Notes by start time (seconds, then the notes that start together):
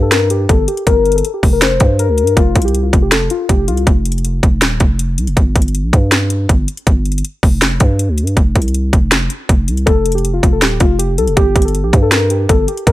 Already playing: G2
0.02 A4
0.12 A#4, snare, closed hi-hat
0.30 G4, closed hi-hat
0.49 G1 A4, kick, closed hi-hat
0.68 G4, closed hi-hat
0.77 closed hi-hat
0.87 G1 A#4, kick, closed hi-hat
1.05 closed hi-hat
1.12 A4, closed hi-hat
1.18 closed hi-hat
1.25 closed hi-hat
1.34 G4
1.43 F1, kick, open hi-hat
1.53 A#4
1.62 C5, snare, closed hi-hat
1.80 G2, kick, closed hi-hat
1.99 A#4, closed hi-hat
2.09 D2
2.18 closed hi-hat, open hi-hat
2.23 G2
2.27 closed hi-hat
2.36 F1 F4, kick, closed hi-hat
2.55 C2, kick, closed hi-hat
2.62 G4, closed hi-hat
2.68 closed hi-hat
2.75 closed hi-hat
2.83 F4
2.93 F1, kick, closed hi-hat
3.02 G4
3.12 A4, snare, closed hi-hat
3.30 F4, closed hi-hat
3.49 F1 G4, kick, closed hi-hat
3.68 C2 F4, closed hi-hat
3.77 closed hi-hat
3.87 F1, kick, closed hi-hat
4.05 closed hi-hat
4.12 closed hi-hat
4.18 closed hi-hat
4.25 closed hi-hat
4.43 F1, kick, closed hi-hat
4.62 D#1, snare, closed hi-hat
4.80 F1, kick, closed hi-hat
4.99 closed hi-hat
5.18 C2, closed hi-hat
5.27 F1, closed hi-hat
5.37 G1, kick, closed hi-hat
5.56 G1, kick, closed hi-hat
5.62 closed hi-hat
5.68 closed hi-hat
5.75 closed hi-hat
5.84 A#1
5.93 G2, kick, closed hi-hat
6.12 snare, closed hi-hat
6.30 closed hi-hat
6.49 G1, kick, closed hi-hat
6.68 closed hi-hat
6.77 closed hi-hat
6.87 G1, kick, closed hi-hat
7.05 closed hi-hat
7.12 closed hi-hat
7.18 closed hi-hat
7.25 closed hi-hat
7.43 F1, kick, open hi-hat
7.62 snare, closed hi-hat
7.80 G2, kick, closed hi-hat
7.99 closed hi-hat
8.09 D2
8.18 closed hi-hat, open hi-hat
8.23 G2
8.27 closed hi-hat
8.37 F1, kick, closed hi-hat
8.55 C2, kick, closed hi-hat
8.62 closed hi-hat
8.68 closed hi-hat
8.74 closed hi-hat
8.93 F1, kick, closed hi-hat
9.12 snare, closed hi-hat
9.30 closed hi-hat
9.49 F1, kick, closed hi-hat
9.68 C2, closed hi-hat
9.77 closed hi-hat
9.86 F1 A4, kick, closed hi-hat
10.06 closed hi-hat
10.12 G4, closed hi-hat
10.18 closed hi-hat
10.25 closed hi-hat
10.34 F4
10.43 F1, kick, closed hi-hat
10.53 A4
10.62 D#1 G4, snare, closed hi-hat
10.80 F1 F4, kick, closed hi-hat
10.99 G4, closed hi-hat
11.18 C2 A4, closed hi-hat
11.27 F1, closed hi-hat
11.37 G1 G4, kick, closed hi-hat
11.56 G1, kick, closed hi-hat
11.62 A4, closed hi-hat
11.68 closed hi-hat
11.75 closed hi-hat
11.84 A#1 G4
11.93 G2, kick, closed hi-hat
12.02 A4
12.12 A#4, snare, closed hi-hat
12.30 G4, closed hi-hat
12.49 G1 A4, kick, closed hi-hat
12.68 G4, closed hi-hat
12.77 closed hi-hat
12.87 G1 A#4, kick, closed hi-hat